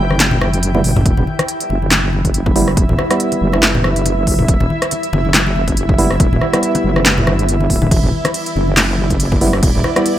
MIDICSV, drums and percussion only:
0, 0, Header, 1, 2, 480
1, 0, Start_track
1, 0, Key_signature, 1, "minor"
1, 0, Tempo, 428571
1, 1184, Time_signature, 4, 2, 24, 8
1, 11408, End_track
2, 0, Start_track
2, 0, Title_t, "Drums"
2, 115, Note_on_c, 9, 63, 71
2, 118, Note_on_c, 9, 37, 56
2, 224, Note_on_c, 9, 38, 122
2, 224, Note_on_c, 9, 39, 97
2, 224, Note_on_c, 9, 42, 88
2, 227, Note_off_c, 9, 63, 0
2, 230, Note_off_c, 9, 37, 0
2, 232, Note_on_c, 9, 62, 56
2, 336, Note_off_c, 9, 38, 0
2, 336, Note_off_c, 9, 39, 0
2, 336, Note_off_c, 9, 42, 0
2, 344, Note_off_c, 9, 62, 0
2, 349, Note_on_c, 9, 64, 79
2, 461, Note_off_c, 9, 64, 0
2, 463, Note_on_c, 9, 62, 78
2, 464, Note_on_c, 9, 37, 75
2, 467, Note_on_c, 9, 63, 67
2, 575, Note_off_c, 9, 62, 0
2, 576, Note_off_c, 9, 37, 0
2, 579, Note_off_c, 9, 63, 0
2, 599, Note_on_c, 9, 42, 58
2, 703, Note_off_c, 9, 42, 0
2, 703, Note_on_c, 9, 42, 84
2, 815, Note_off_c, 9, 42, 0
2, 834, Note_on_c, 9, 62, 56
2, 838, Note_on_c, 9, 48, 52
2, 942, Note_on_c, 9, 46, 95
2, 942, Note_on_c, 9, 47, 76
2, 946, Note_off_c, 9, 62, 0
2, 950, Note_off_c, 9, 48, 0
2, 1054, Note_off_c, 9, 46, 0
2, 1054, Note_off_c, 9, 47, 0
2, 1077, Note_on_c, 9, 63, 63
2, 1077, Note_on_c, 9, 64, 88
2, 1078, Note_on_c, 9, 45, 80
2, 1080, Note_on_c, 9, 62, 78
2, 1183, Note_on_c, 9, 36, 121
2, 1183, Note_on_c, 9, 42, 80
2, 1189, Note_off_c, 9, 63, 0
2, 1189, Note_off_c, 9, 64, 0
2, 1190, Note_off_c, 9, 45, 0
2, 1192, Note_off_c, 9, 62, 0
2, 1295, Note_off_c, 9, 36, 0
2, 1295, Note_off_c, 9, 42, 0
2, 1314, Note_on_c, 9, 64, 72
2, 1316, Note_on_c, 9, 62, 55
2, 1425, Note_on_c, 9, 63, 66
2, 1426, Note_off_c, 9, 64, 0
2, 1428, Note_off_c, 9, 62, 0
2, 1537, Note_off_c, 9, 63, 0
2, 1558, Note_on_c, 9, 37, 80
2, 1558, Note_on_c, 9, 42, 53
2, 1558, Note_on_c, 9, 62, 83
2, 1663, Note_off_c, 9, 42, 0
2, 1663, Note_on_c, 9, 42, 89
2, 1670, Note_off_c, 9, 37, 0
2, 1670, Note_off_c, 9, 62, 0
2, 1775, Note_off_c, 9, 42, 0
2, 1798, Note_on_c, 9, 42, 61
2, 1903, Note_on_c, 9, 62, 58
2, 1910, Note_off_c, 9, 42, 0
2, 2015, Note_off_c, 9, 62, 0
2, 2041, Note_on_c, 9, 63, 70
2, 2137, Note_on_c, 9, 62, 82
2, 2143, Note_on_c, 9, 38, 123
2, 2143, Note_on_c, 9, 39, 98
2, 2143, Note_on_c, 9, 42, 87
2, 2153, Note_off_c, 9, 63, 0
2, 2249, Note_off_c, 9, 62, 0
2, 2255, Note_off_c, 9, 38, 0
2, 2255, Note_off_c, 9, 39, 0
2, 2255, Note_off_c, 9, 42, 0
2, 2384, Note_on_c, 9, 63, 65
2, 2496, Note_off_c, 9, 63, 0
2, 2517, Note_on_c, 9, 36, 63
2, 2517, Note_on_c, 9, 62, 54
2, 2518, Note_on_c, 9, 42, 54
2, 2623, Note_off_c, 9, 42, 0
2, 2623, Note_on_c, 9, 42, 80
2, 2629, Note_off_c, 9, 36, 0
2, 2629, Note_off_c, 9, 62, 0
2, 2735, Note_off_c, 9, 42, 0
2, 2757, Note_on_c, 9, 36, 111
2, 2758, Note_on_c, 9, 62, 77
2, 2863, Note_on_c, 9, 46, 93
2, 2869, Note_off_c, 9, 36, 0
2, 2870, Note_off_c, 9, 62, 0
2, 2975, Note_off_c, 9, 46, 0
2, 2998, Note_on_c, 9, 37, 58
2, 3103, Note_on_c, 9, 36, 123
2, 3103, Note_on_c, 9, 62, 56
2, 3104, Note_on_c, 9, 42, 81
2, 3110, Note_off_c, 9, 37, 0
2, 3215, Note_off_c, 9, 36, 0
2, 3215, Note_off_c, 9, 62, 0
2, 3216, Note_off_c, 9, 42, 0
2, 3239, Note_on_c, 9, 64, 85
2, 3344, Note_on_c, 9, 37, 63
2, 3346, Note_on_c, 9, 62, 79
2, 3347, Note_on_c, 9, 63, 69
2, 3351, Note_off_c, 9, 64, 0
2, 3456, Note_off_c, 9, 37, 0
2, 3458, Note_off_c, 9, 62, 0
2, 3459, Note_off_c, 9, 63, 0
2, 3478, Note_on_c, 9, 37, 80
2, 3478, Note_on_c, 9, 42, 55
2, 3583, Note_off_c, 9, 42, 0
2, 3583, Note_on_c, 9, 42, 89
2, 3590, Note_off_c, 9, 37, 0
2, 3695, Note_off_c, 9, 42, 0
2, 3718, Note_on_c, 9, 42, 54
2, 3722, Note_on_c, 9, 62, 49
2, 3830, Note_off_c, 9, 42, 0
2, 3834, Note_off_c, 9, 62, 0
2, 3948, Note_on_c, 9, 63, 64
2, 3957, Note_on_c, 9, 37, 62
2, 3960, Note_on_c, 9, 62, 79
2, 4060, Note_off_c, 9, 63, 0
2, 4063, Note_on_c, 9, 38, 127
2, 4063, Note_on_c, 9, 39, 99
2, 4063, Note_on_c, 9, 42, 90
2, 4069, Note_off_c, 9, 37, 0
2, 4072, Note_off_c, 9, 62, 0
2, 4175, Note_off_c, 9, 38, 0
2, 4175, Note_off_c, 9, 39, 0
2, 4175, Note_off_c, 9, 42, 0
2, 4196, Note_on_c, 9, 64, 86
2, 4301, Note_on_c, 9, 63, 73
2, 4303, Note_on_c, 9, 37, 84
2, 4307, Note_on_c, 9, 62, 61
2, 4308, Note_off_c, 9, 64, 0
2, 4413, Note_off_c, 9, 63, 0
2, 4415, Note_off_c, 9, 37, 0
2, 4419, Note_off_c, 9, 62, 0
2, 4437, Note_on_c, 9, 42, 53
2, 4543, Note_off_c, 9, 42, 0
2, 4543, Note_on_c, 9, 42, 84
2, 4545, Note_on_c, 9, 62, 82
2, 4655, Note_off_c, 9, 42, 0
2, 4657, Note_off_c, 9, 62, 0
2, 4782, Note_on_c, 9, 46, 85
2, 4783, Note_on_c, 9, 36, 68
2, 4894, Note_off_c, 9, 46, 0
2, 4895, Note_off_c, 9, 36, 0
2, 4913, Note_on_c, 9, 62, 57
2, 4915, Note_on_c, 9, 64, 76
2, 5022, Note_on_c, 9, 42, 77
2, 5023, Note_on_c, 9, 36, 127
2, 5025, Note_off_c, 9, 62, 0
2, 5027, Note_off_c, 9, 64, 0
2, 5134, Note_off_c, 9, 42, 0
2, 5135, Note_off_c, 9, 36, 0
2, 5156, Note_on_c, 9, 64, 78
2, 5158, Note_on_c, 9, 62, 71
2, 5265, Note_on_c, 9, 63, 75
2, 5268, Note_off_c, 9, 64, 0
2, 5270, Note_off_c, 9, 62, 0
2, 5377, Note_off_c, 9, 63, 0
2, 5398, Note_on_c, 9, 37, 80
2, 5398, Note_on_c, 9, 42, 53
2, 5502, Note_off_c, 9, 42, 0
2, 5502, Note_on_c, 9, 42, 84
2, 5510, Note_off_c, 9, 37, 0
2, 5515, Note_on_c, 9, 62, 55
2, 5614, Note_off_c, 9, 42, 0
2, 5627, Note_off_c, 9, 62, 0
2, 5637, Note_on_c, 9, 42, 53
2, 5746, Note_on_c, 9, 62, 85
2, 5749, Note_off_c, 9, 42, 0
2, 5858, Note_off_c, 9, 62, 0
2, 5877, Note_on_c, 9, 63, 82
2, 5982, Note_on_c, 9, 38, 127
2, 5982, Note_on_c, 9, 39, 101
2, 5982, Note_on_c, 9, 42, 80
2, 5989, Note_off_c, 9, 63, 0
2, 6094, Note_off_c, 9, 38, 0
2, 6094, Note_off_c, 9, 39, 0
2, 6094, Note_off_c, 9, 42, 0
2, 6122, Note_on_c, 9, 62, 51
2, 6226, Note_on_c, 9, 63, 64
2, 6234, Note_off_c, 9, 62, 0
2, 6338, Note_off_c, 9, 63, 0
2, 6358, Note_on_c, 9, 36, 67
2, 6358, Note_on_c, 9, 42, 52
2, 6359, Note_on_c, 9, 62, 66
2, 6463, Note_off_c, 9, 42, 0
2, 6463, Note_on_c, 9, 42, 80
2, 6470, Note_off_c, 9, 36, 0
2, 6471, Note_off_c, 9, 62, 0
2, 6575, Note_off_c, 9, 42, 0
2, 6598, Note_on_c, 9, 36, 115
2, 6702, Note_on_c, 9, 62, 50
2, 6703, Note_on_c, 9, 46, 85
2, 6710, Note_off_c, 9, 36, 0
2, 6814, Note_off_c, 9, 62, 0
2, 6815, Note_off_c, 9, 46, 0
2, 6838, Note_on_c, 9, 37, 62
2, 6943, Note_on_c, 9, 36, 127
2, 6944, Note_on_c, 9, 42, 79
2, 6946, Note_on_c, 9, 62, 77
2, 6950, Note_off_c, 9, 37, 0
2, 7055, Note_off_c, 9, 36, 0
2, 7056, Note_off_c, 9, 42, 0
2, 7058, Note_off_c, 9, 62, 0
2, 7087, Note_on_c, 9, 64, 76
2, 7184, Note_on_c, 9, 37, 63
2, 7185, Note_on_c, 9, 63, 72
2, 7199, Note_off_c, 9, 64, 0
2, 7296, Note_off_c, 9, 37, 0
2, 7297, Note_off_c, 9, 63, 0
2, 7319, Note_on_c, 9, 37, 84
2, 7319, Note_on_c, 9, 42, 52
2, 7326, Note_on_c, 9, 62, 50
2, 7424, Note_off_c, 9, 42, 0
2, 7424, Note_on_c, 9, 42, 77
2, 7431, Note_off_c, 9, 37, 0
2, 7438, Note_off_c, 9, 62, 0
2, 7536, Note_off_c, 9, 42, 0
2, 7559, Note_on_c, 9, 42, 51
2, 7561, Note_on_c, 9, 62, 83
2, 7671, Note_off_c, 9, 42, 0
2, 7673, Note_off_c, 9, 62, 0
2, 7795, Note_on_c, 9, 63, 65
2, 7798, Note_on_c, 9, 37, 68
2, 7897, Note_on_c, 9, 62, 53
2, 7903, Note_on_c, 9, 38, 127
2, 7903, Note_on_c, 9, 39, 94
2, 7903, Note_on_c, 9, 42, 80
2, 7907, Note_off_c, 9, 63, 0
2, 7910, Note_off_c, 9, 37, 0
2, 8009, Note_off_c, 9, 62, 0
2, 8015, Note_off_c, 9, 38, 0
2, 8015, Note_off_c, 9, 39, 0
2, 8015, Note_off_c, 9, 42, 0
2, 8039, Note_on_c, 9, 64, 85
2, 8143, Note_on_c, 9, 62, 82
2, 8144, Note_on_c, 9, 37, 85
2, 8150, Note_on_c, 9, 63, 65
2, 8151, Note_off_c, 9, 64, 0
2, 8255, Note_off_c, 9, 62, 0
2, 8256, Note_off_c, 9, 37, 0
2, 8262, Note_off_c, 9, 63, 0
2, 8279, Note_on_c, 9, 42, 50
2, 8384, Note_off_c, 9, 42, 0
2, 8384, Note_on_c, 9, 42, 75
2, 8496, Note_off_c, 9, 42, 0
2, 8518, Note_on_c, 9, 62, 52
2, 8623, Note_on_c, 9, 36, 68
2, 8624, Note_on_c, 9, 46, 90
2, 8630, Note_off_c, 9, 62, 0
2, 8735, Note_off_c, 9, 36, 0
2, 8736, Note_off_c, 9, 46, 0
2, 8754, Note_on_c, 9, 62, 73
2, 8757, Note_on_c, 9, 64, 78
2, 8761, Note_on_c, 9, 63, 61
2, 8862, Note_on_c, 9, 36, 125
2, 8864, Note_on_c, 9, 42, 78
2, 8864, Note_on_c, 9, 49, 69
2, 8866, Note_off_c, 9, 62, 0
2, 8869, Note_off_c, 9, 64, 0
2, 8873, Note_off_c, 9, 63, 0
2, 8974, Note_off_c, 9, 36, 0
2, 8976, Note_off_c, 9, 42, 0
2, 8976, Note_off_c, 9, 49, 0
2, 8995, Note_on_c, 9, 62, 46
2, 8995, Note_on_c, 9, 64, 70
2, 9096, Note_on_c, 9, 63, 63
2, 9107, Note_off_c, 9, 62, 0
2, 9107, Note_off_c, 9, 64, 0
2, 9208, Note_off_c, 9, 63, 0
2, 9238, Note_on_c, 9, 62, 84
2, 9239, Note_on_c, 9, 37, 88
2, 9239, Note_on_c, 9, 42, 54
2, 9343, Note_off_c, 9, 42, 0
2, 9343, Note_on_c, 9, 42, 78
2, 9343, Note_on_c, 9, 49, 54
2, 9350, Note_off_c, 9, 62, 0
2, 9351, Note_off_c, 9, 37, 0
2, 9455, Note_off_c, 9, 42, 0
2, 9455, Note_off_c, 9, 49, 0
2, 9479, Note_on_c, 9, 42, 56
2, 9591, Note_off_c, 9, 42, 0
2, 9591, Note_on_c, 9, 62, 60
2, 9703, Note_off_c, 9, 62, 0
2, 9715, Note_on_c, 9, 63, 65
2, 9818, Note_on_c, 9, 62, 78
2, 9823, Note_on_c, 9, 38, 127
2, 9823, Note_on_c, 9, 39, 91
2, 9823, Note_on_c, 9, 42, 82
2, 9823, Note_on_c, 9, 49, 72
2, 9827, Note_off_c, 9, 63, 0
2, 9930, Note_off_c, 9, 62, 0
2, 9935, Note_off_c, 9, 38, 0
2, 9935, Note_off_c, 9, 39, 0
2, 9935, Note_off_c, 9, 42, 0
2, 9935, Note_off_c, 9, 49, 0
2, 10061, Note_on_c, 9, 63, 63
2, 10173, Note_off_c, 9, 63, 0
2, 10192, Note_on_c, 9, 62, 47
2, 10197, Note_on_c, 9, 36, 64
2, 10197, Note_on_c, 9, 42, 54
2, 10302, Note_off_c, 9, 42, 0
2, 10302, Note_on_c, 9, 42, 80
2, 10302, Note_on_c, 9, 49, 48
2, 10304, Note_off_c, 9, 62, 0
2, 10309, Note_off_c, 9, 36, 0
2, 10414, Note_off_c, 9, 42, 0
2, 10414, Note_off_c, 9, 49, 0
2, 10438, Note_on_c, 9, 36, 104
2, 10438, Note_on_c, 9, 62, 85
2, 10542, Note_on_c, 9, 46, 96
2, 10550, Note_off_c, 9, 36, 0
2, 10550, Note_off_c, 9, 62, 0
2, 10654, Note_off_c, 9, 46, 0
2, 10677, Note_on_c, 9, 37, 64
2, 10782, Note_on_c, 9, 42, 80
2, 10782, Note_on_c, 9, 49, 70
2, 10783, Note_on_c, 9, 36, 121
2, 10788, Note_on_c, 9, 62, 53
2, 10789, Note_off_c, 9, 37, 0
2, 10894, Note_off_c, 9, 42, 0
2, 10894, Note_off_c, 9, 49, 0
2, 10895, Note_off_c, 9, 36, 0
2, 10900, Note_off_c, 9, 62, 0
2, 10921, Note_on_c, 9, 64, 70
2, 11021, Note_on_c, 9, 62, 83
2, 11023, Note_on_c, 9, 63, 59
2, 11024, Note_on_c, 9, 37, 63
2, 11033, Note_off_c, 9, 64, 0
2, 11133, Note_off_c, 9, 62, 0
2, 11135, Note_off_c, 9, 63, 0
2, 11136, Note_off_c, 9, 37, 0
2, 11158, Note_on_c, 9, 37, 84
2, 11158, Note_on_c, 9, 42, 54
2, 11264, Note_off_c, 9, 42, 0
2, 11264, Note_on_c, 9, 42, 85
2, 11264, Note_on_c, 9, 49, 50
2, 11270, Note_off_c, 9, 37, 0
2, 11376, Note_off_c, 9, 42, 0
2, 11376, Note_off_c, 9, 49, 0
2, 11408, End_track
0, 0, End_of_file